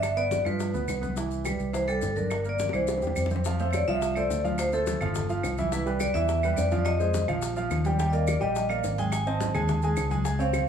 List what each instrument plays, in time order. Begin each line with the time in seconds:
Already playing: fingered electric bass G1, grand piano D4 D5, vibraphone E5
0.03 high bongo, claves, maracas
0.17 grand piano B3 B4, vibraphone D5, high conga, maracas
0.31 high bongo, high conga, maracas
0.45 fingered electric bass G2, grand piano F3 F4, vibraphone B4, high bongo, high conga, claves, maracas
0.60 high bongo, high conga, maracas
0.74 fingered electric bass D2, grand piano B3 B4, high bongo, high conga, maracas
0.88 fingered electric bass C2, high bongo, low bongo, high conga, claves, maracas
1.02 grand piano B3 B4, high conga, maracas
1.16 grand piano E3 E4, high bongo, high conga, maracas
1.31 high conga, maracas
1.44 grand piano G3 G4, vibraphone B4, high bongo, high conga, claves, maracas
1.59 fingered electric bass C2, high bongo, high conga, maracas
1.73 grand piano E3 E4, vibraphone C5, high bongo, high conga, maracas
1.88 grand piano G3 G4, vibraphone A4, high bongo, high conga, claves, maracas
2.02 fingered electric bass G1, high bongo, low bongo, high conga, maracas
2.16 grand piano D4 D5, vibraphone A#4, high conga, maracas
2.30 high bongo, high conga, claves, maracas
2.45 grand piano A#3 A#4, high conga, maracas
2.49 vibraphone D5
2.59 high bongo, high conga, maracas
2.69 high bongo
2.73 fingered electric bass C2, grand piano E3 E4, vibraphone C5, high conga, claves, maracas
2.87 high bongo, high conga, maracas
2.98 low bongo
3.02 fingered electric bass E2, grand piano G3 G4, high conga, maracas
3.07 low bongo
3.16 fingered electric bass F2, high conga, claves, maracas
3.26 low bongo
3.30 grand piano C4 C5, high conga, maracas
3.36 low bongo
3.45 grand piano F3 F4 F5, high bongo, maracas
3.59 grand piano A3 A4 C5, vibraphone F5, high conga, maracas
3.71 vibraphone C#5 D5, high bongo, high conga, claves, maracas
3.88 fingered electric bass C2, grand piano F3 F4 F5, vibraphone E5, high conga, maracas
4.02 high bongo, high conga, maracas
4.15 grand piano A3 A4 C5, vibraphone D5, high bongo, high conga, claves, maracas
4.30 fingered electric bass D2, high bongo, low bongo, high conga, maracas
4.44 grand piano F3 F4 F5, high conga, maracas
4.58 vibraphone C5, high bongo, high conga, claves, maracas
4.73 grand piano A3 A4 C5, vibraphone A4, high conga, maracas
4.87 high bongo, high conga, maracas
5.01 fingered electric bass G1, grand piano F3 F4 F5, high bongo, high conga, low conga, claves, maracas
5.15 high bongo, high conga, low conga, maracas
5.29 grand piano F3 F4 F5, high bongo, high conga, maracas
5.43 fingered electric bass C2, high bongo, low bongo, high conga, claves, maracas
5.58 grand piano E3 E4 E5, high conga, maracas
5.72 grand piano E3 E4 E5, vibraphone B4, high bongo, high conga, maracas
5.86 grand piano G3 G4 B4, high conga, maracas
6.00 vibraphone D5, high bongo, high conga, claves, maracas
6.14 fingered electric bass E2, grand piano E3 E4 E5, vibraphone E5, high bongo, high conga, maracas
6.28 high bongo, high conga, maracas
6.43 grand piano G3 G4 B4, high bongo, high conga, claves, maracas
6.56 fingered electric bass F2, vibraphone D5, high bongo, low bongo, high conga, maracas
6.71 grand piano F3 F4 F5, high conga, maracas
6.79 vibraphone D5
6.85 vibraphone D#5, high bongo, high conga, claves, maracas
6.99 grand piano G#3 G#4 C5, high conga, maracas
7.14 high bongo, high conga, maracas
7.28 fingered electric bass A#1, grand piano F3 F4 F5, high bongo, high conga, low conga, claves, maracas
7.42 high bongo, high conga, maracas
7.56 grand piano F3 F4 F5, high bongo, high conga, maracas
7.70 fingered electric bass D#2, high bongo, low bongo, high conga, claves, maracas
7.85 grand piano G3 G4 G5, high conga, maracas
7.99 grand piano G3 G4 G5, high bongo, high conga, maracas
8.10 grand piano A#3 A#4 D5, vibraphone D#5 F5, maracas
8.14 high conga
8.27 vibraphone D5, high bongo, high conga, claves, maracas
8.40 fingered electric bass A#1, grand piano G3 G4 G5, vibraphone D#5, high bongo, high conga, maracas
8.55 high bongo, high conga, maracas
8.69 grand piano A#3 A#4 D5, vibraphone F5, high bongo, high conga, claves, maracas
8.84 fingered electric bass G#1, high bongo, low bongo, high conga, maracas
8.98 grand piano G#3 G#4 G#5, vibraphone G5, high conga, maracas
9.12 vibraphone G#5, high bongo, high conga, claves, maracas
9.27 grand piano C4 C5 D#5, vibraphone A5, high conga, maracas
9.40 high bongo, high conga, maracas
9.54 fingered electric bass D#2, grand piano G#3 G#4 G#5, high bongo, high conga, low conga, claves, maracas
9.68 high bongo, high conga, low conga, maracas
9.82 grand piano G#3 G#4 G#5, high bongo, high conga, maracas
9.97 fingered electric bass C#2, high bongo, low bongo, high conga, claves, maracas
10.11 grand piano G#3 G#4 G#5, high conga, maracas
10.24 grand piano G#3 G#4 G#5, high bongo, maracas
10.39 grand piano C4 C5 C#5, vibraphone F5, high conga, maracas
10.53 high bongo, high conga, claves, maracas